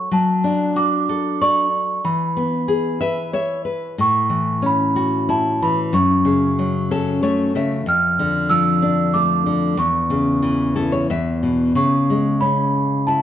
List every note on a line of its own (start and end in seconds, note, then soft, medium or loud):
0.11 1.98 F#3 medium
0.11 0.71 A5 medium
0.44 1.67 D4 medium
0.76 1.99 F#4 medium
0.76 1.41 D6 medium
1.09 2.01 A4 medium
1.41 2.02 D5 medium
1.41 2.00 C#6 medium
2.05 3.95 E3 medium
2.05 3.63 B5 medium
2.37 3.01 B3 soft
2.68 3.95 G#4 medium
3.01 3.33 B4 soft
3.01 3.31 E5 medium
3.33 3.64 C#5 medium
3.33 3.97 E5 medium
3.65 3.96 B4 soft
3.98 5.90 A2 medium
3.98 4.61 C#6 medium
4.30 5.57 E3 soft
4.62 5.89 C#4 medium
4.62 5.33 B5 medium
4.96 5.91 F#4 soft
5.29 5.92 E4 soft
5.29 5.63 A5 medium
5.62 5.93 E3 soft
5.62 5.77 B5 medium
5.93 7.55 F#2 medium
5.93 6.86 C#6 medium
6.25 7.23 C#3 medium
6.59 7.82 F#3 medium
6.91 7.83 C#4 medium
6.91 7.20 A4 medium
7.23 7.84 A3 medium
7.23 7.52 C#5 medium
7.55 7.85 C#3 soft
7.55 7.84 E5 soft
7.86 9.75 F2 medium
7.86 8.53 F6 medium
8.19 9.43 D3 soft
8.50 9.75 F3 medium
8.50 9.16 E6 medium
8.82 9.76 D4 medium
9.14 9.77 A3 soft
9.14 9.80 D6 medium
9.46 9.78 D3 soft
9.77 11.05 E2 medium
9.77 10.73 C#6 medium
10.10 11.06 C#3 soft
10.42 11.07 E3 soft
10.76 11.08 E4 soft
10.76 10.91 A4 medium
10.92 11.08 C#5 medium
11.10 11.74 E2 medium
11.10 11.72 E5 medium
11.43 11.75 B2 soft
11.75 13.22 C#3 medium
11.75 12.37 C#6 medium
12.10 13.22 G#3 medium
12.41 13.22 C#4 soft
12.41 13.09 B5 medium
13.07 13.22 E4 soft
13.07 13.22 A5 medium